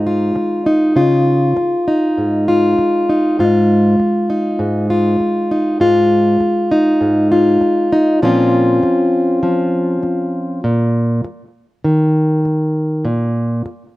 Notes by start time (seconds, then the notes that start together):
Already playing: G#2 D#4
0.07 F4
0.35 muted steel-string acoustic guitar stroke
0.66 D#4
0.96 C#3 F4
1.56 muted steel-string acoustic guitar stroke
1.88 D#4
2.18 G#2
2.48 F4
2.78 muted steel-string acoustic guitar stroke
3.09 D#4
3.39 G#2 F4
4.00 muted steel-string acoustic guitar stroke
4.30 D#4
4.59 G#2
4.90 F4
5.20 muted steel-string acoustic guitar stroke
5.51 D#4
5.80 G#2 F4
6.40 muted steel-string acoustic guitar stroke
6.71 D#4
7.01 G#2
7.32 F4
7.61 muted steel-string acoustic guitar stroke
7.92 D#4
8.22 A#2 F3 C4 C#4 F4
8.83 muted steel-string acoustic guitar stroke
9.43 F3
10.03 muted steel-string acoustic guitar stroke
10.64 A#2
11.24 muted steel-string acoustic guitar stroke
11.84 D#3
12.45 muted steel-string acoustic guitar stroke
13.05 A#2
13.66 muted steel-string acoustic guitar stroke